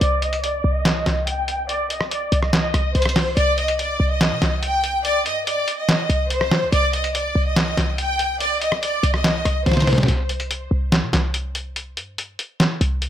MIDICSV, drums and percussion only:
0, 0, Header, 1, 2, 480
1, 0, Start_track
1, 0, Key_signature, -3, "minor"
1, 0, Tempo, 419580
1, 14, Time_signature, 4, 2, 24, 8
1, 14977, End_track
2, 0, Start_track
2, 0, Title_t, "Drums"
2, 15, Note_on_c, 9, 42, 74
2, 130, Note_off_c, 9, 42, 0
2, 254, Note_on_c, 9, 42, 65
2, 368, Note_off_c, 9, 42, 0
2, 375, Note_on_c, 9, 42, 62
2, 489, Note_off_c, 9, 42, 0
2, 499, Note_on_c, 9, 42, 85
2, 614, Note_off_c, 9, 42, 0
2, 974, Note_on_c, 9, 42, 90
2, 975, Note_on_c, 9, 38, 119
2, 984, Note_on_c, 9, 39, 97
2, 1089, Note_off_c, 9, 42, 0
2, 1090, Note_off_c, 9, 38, 0
2, 1099, Note_off_c, 9, 39, 0
2, 1216, Note_on_c, 9, 38, 90
2, 1216, Note_on_c, 9, 42, 85
2, 1225, Note_on_c, 9, 39, 74
2, 1330, Note_off_c, 9, 38, 0
2, 1330, Note_off_c, 9, 42, 0
2, 1339, Note_off_c, 9, 39, 0
2, 1454, Note_on_c, 9, 42, 88
2, 1568, Note_off_c, 9, 42, 0
2, 1693, Note_on_c, 9, 42, 73
2, 1808, Note_off_c, 9, 42, 0
2, 1935, Note_on_c, 9, 42, 73
2, 2049, Note_off_c, 9, 42, 0
2, 2176, Note_on_c, 9, 42, 73
2, 2291, Note_off_c, 9, 42, 0
2, 2294, Note_on_c, 9, 37, 96
2, 2409, Note_off_c, 9, 37, 0
2, 2419, Note_on_c, 9, 42, 85
2, 2533, Note_off_c, 9, 42, 0
2, 2655, Note_on_c, 9, 42, 76
2, 2770, Note_off_c, 9, 42, 0
2, 2775, Note_on_c, 9, 37, 72
2, 2889, Note_off_c, 9, 37, 0
2, 2895, Note_on_c, 9, 42, 97
2, 2896, Note_on_c, 9, 38, 115
2, 2905, Note_on_c, 9, 39, 96
2, 3009, Note_off_c, 9, 42, 0
2, 3010, Note_off_c, 9, 38, 0
2, 3019, Note_off_c, 9, 39, 0
2, 3135, Note_on_c, 9, 37, 67
2, 3136, Note_on_c, 9, 42, 83
2, 3250, Note_off_c, 9, 37, 0
2, 3250, Note_off_c, 9, 42, 0
2, 3375, Note_on_c, 9, 42, 50
2, 3454, Note_off_c, 9, 42, 0
2, 3454, Note_on_c, 9, 42, 65
2, 3495, Note_on_c, 9, 37, 99
2, 3534, Note_off_c, 9, 42, 0
2, 3534, Note_on_c, 9, 42, 79
2, 3609, Note_off_c, 9, 37, 0
2, 3613, Note_on_c, 9, 46, 84
2, 3614, Note_on_c, 9, 38, 89
2, 3623, Note_on_c, 9, 39, 69
2, 3648, Note_off_c, 9, 42, 0
2, 3727, Note_off_c, 9, 46, 0
2, 3728, Note_off_c, 9, 38, 0
2, 3737, Note_off_c, 9, 39, 0
2, 3854, Note_on_c, 9, 42, 74
2, 3968, Note_off_c, 9, 42, 0
2, 4093, Note_on_c, 9, 42, 62
2, 4208, Note_off_c, 9, 42, 0
2, 4213, Note_on_c, 9, 42, 62
2, 4328, Note_off_c, 9, 42, 0
2, 4338, Note_on_c, 9, 42, 86
2, 4452, Note_off_c, 9, 42, 0
2, 4813, Note_on_c, 9, 42, 97
2, 4815, Note_on_c, 9, 38, 118
2, 4824, Note_on_c, 9, 39, 96
2, 4928, Note_off_c, 9, 42, 0
2, 4929, Note_off_c, 9, 38, 0
2, 4938, Note_off_c, 9, 39, 0
2, 5054, Note_on_c, 9, 38, 91
2, 5054, Note_on_c, 9, 42, 88
2, 5063, Note_on_c, 9, 39, 74
2, 5168, Note_off_c, 9, 38, 0
2, 5168, Note_off_c, 9, 42, 0
2, 5178, Note_off_c, 9, 39, 0
2, 5292, Note_on_c, 9, 42, 86
2, 5407, Note_off_c, 9, 42, 0
2, 5533, Note_on_c, 9, 42, 76
2, 5647, Note_off_c, 9, 42, 0
2, 5774, Note_on_c, 9, 42, 76
2, 5889, Note_off_c, 9, 42, 0
2, 6016, Note_on_c, 9, 42, 75
2, 6130, Note_off_c, 9, 42, 0
2, 6259, Note_on_c, 9, 42, 87
2, 6373, Note_off_c, 9, 42, 0
2, 6495, Note_on_c, 9, 42, 80
2, 6609, Note_off_c, 9, 42, 0
2, 6733, Note_on_c, 9, 42, 94
2, 6735, Note_on_c, 9, 38, 118
2, 6744, Note_on_c, 9, 39, 94
2, 6848, Note_off_c, 9, 42, 0
2, 6849, Note_off_c, 9, 38, 0
2, 6858, Note_off_c, 9, 39, 0
2, 6974, Note_on_c, 9, 42, 82
2, 7089, Note_off_c, 9, 42, 0
2, 7212, Note_on_c, 9, 42, 81
2, 7327, Note_off_c, 9, 42, 0
2, 7333, Note_on_c, 9, 37, 99
2, 7447, Note_off_c, 9, 37, 0
2, 7453, Note_on_c, 9, 38, 89
2, 7462, Note_on_c, 9, 39, 70
2, 7567, Note_off_c, 9, 38, 0
2, 7576, Note_off_c, 9, 39, 0
2, 7693, Note_on_c, 9, 42, 77
2, 7808, Note_off_c, 9, 42, 0
2, 7933, Note_on_c, 9, 42, 64
2, 8047, Note_off_c, 9, 42, 0
2, 8054, Note_on_c, 9, 42, 61
2, 8168, Note_off_c, 9, 42, 0
2, 8178, Note_on_c, 9, 42, 88
2, 8292, Note_off_c, 9, 42, 0
2, 8653, Note_on_c, 9, 42, 93
2, 8654, Note_on_c, 9, 38, 122
2, 8663, Note_on_c, 9, 39, 96
2, 8768, Note_off_c, 9, 42, 0
2, 8769, Note_off_c, 9, 38, 0
2, 8778, Note_off_c, 9, 39, 0
2, 8894, Note_on_c, 9, 38, 89
2, 8894, Note_on_c, 9, 42, 87
2, 8903, Note_on_c, 9, 39, 74
2, 9009, Note_off_c, 9, 38, 0
2, 9009, Note_off_c, 9, 42, 0
2, 9018, Note_off_c, 9, 39, 0
2, 9133, Note_on_c, 9, 42, 82
2, 9247, Note_off_c, 9, 42, 0
2, 9373, Note_on_c, 9, 42, 77
2, 9487, Note_off_c, 9, 42, 0
2, 9615, Note_on_c, 9, 42, 76
2, 9730, Note_off_c, 9, 42, 0
2, 9856, Note_on_c, 9, 42, 76
2, 9970, Note_off_c, 9, 42, 0
2, 9974, Note_on_c, 9, 37, 96
2, 10089, Note_off_c, 9, 37, 0
2, 10099, Note_on_c, 9, 42, 86
2, 10213, Note_off_c, 9, 42, 0
2, 10335, Note_on_c, 9, 42, 76
2, 10450, Note_off_c, 9, 42, 0
2, 10454, Note_on_c, 9, 37, 71
2, 10568, Note_off_c, 9, 37, 0
2, 10574, Note_on_c, 9, 42, 91
2, 10575, Note_on_c, 9, 38, 120
2, 10584, Note_on_c, 9, 39, 93
2, 10688, Note_off_c, 9, 42, 0
2, 10689, Note_off_c, 9, 38, 0
2, 10699, Note_off_c, 9, 39, 0
2, 10816, Note_on_c, 9, 37, 68
2, 10816, Note_on_c, 9, 42, 87
2, 10930, Note_off_c, 9, 37, 0
2, 10930, Note_off_c, 9, 42, 0
2, 11055, Note_on_c, 9, 38, 57
2, 11055, Note_on_c, 9, 42, 49
2, 11115, Note_off_c, 9, 38, 0
2, 11115, Note_on_c, 9, 38, 55
2, 11135, Note_off_c, 9, 42, 0
2, 11135, Note_on_c, 9, 42, 65
2, 11176, Note_off_c, 9, 38, 0
2, 11176, Note_on_c, 9, 38, 75
2, 11216, Note_off_c, 9, 42, 0
2, 11216, Note_on_c, 9, 42, 80
2, 11236, Note_off_c, 9, 38, 0
2, 11236, Note_on_c, 9, 38, 67
2, 11295, Note_on_c, 9, 46, 80
2, 11296, Note_off_c, 9, 38, 0
2, 11296, Note_on_c, 9, 38, 88
2, 11330, Note_off_c, 9, 42, 0
2, 11356, Note_off_c, 9, 38, 0
2, 11356, Note_on_c, 9, 38, 78
2, 11409, Note_off_c, 9, 46, 0
2, 11416, Note_off_c, 9, 38, 0
2, 11416, Note_on_c, 9, 38, 103
2, 11475, Note_off_c, 9, 38, 0
2, 11475, Note_on_c, 9, 38, 93
2, 11536, Note_on_c, 9, 42, 78
2, 11590, Note_off_c, 9, 38, 0
2, 11650, Note_off_c, 9, 42, 0
2, 11776, Note_on_c, 9, 42, 63
2, 11890, Note_off_c, 9, 42, 0
2, 11895, Note_on_c, 9, 42, 61
2, 12010, Note_off_c, 9, 42, 0
2, 12019, Note_on_c, 9, 42, 87
2, 12134, Note_off_c, 9, 42, 0
2, 12495, Note_on_c, 9, 42, 95
2, 12496, Note_on_c, 9, 38, 119
2, 12505, Note_on_c, 9, 39, 97
2, 12609, Note_off_c, 9, 42, 0
2, 12610, Note_off_c, 9, 38, 0
2, 12619, Note_off_c, 9, 39, 0
2, 12735, Note_on_c, 9, 38, 91
2, 12735, Note_on_c, 9, 42, 84
2, 12744, Note_on_c, 9, 39, 74
2, 12849, Note_off_c, 9, 38, 0
2, 12850, Note_off_c, 9, 42, 0
2, 12859, Note_off_c, 9, 39, 0
2, 12973, Note_on_c, 9, 42, 85
2, 13088, Note_off_c, 9, 42, 0
2, 13213, Note_on_c, 9, 42, 75
2, 13327, Note_off_c, 9, 42, 0
2, 13455, Note_on_c, 9, 42, 77
2, 13569, Note_off_c, 9, 42, 0
2, 13695, Note_on_c, 9, 42, 75
2, 13809, Note_off_c, 9, 42, 0
2, 13938, Note_on_c, 9, 42, 88
2, 14052, Note_off_c, 9, 42, 0
2, 14175, Note_on_c, 9, 42, 76
2, 14289, Note_off_c, 9, 42, 0
2, 14413, Note_on_c, 9, 42, 94
2, 14415, Note_on_c, 9, 38, 117
2, 14424, Note_on_c, 9, 39, 94
2, 14528, Note_off_c, 9, 42, 0
2, 14529, Note_off_c, 9, 38, 0
2, 14538, Note_off_c, 9, 39, 0
2, 14655, Note_on_c, 9, 42, 86
2, 14770, Note_off_c, 9, 42, 0
2, 14893, Note_on_c, 9, 42, 77
2, 14977, Note_off_c, 9, 42, 0
2, 14977, End_track
0, 0, End_of_file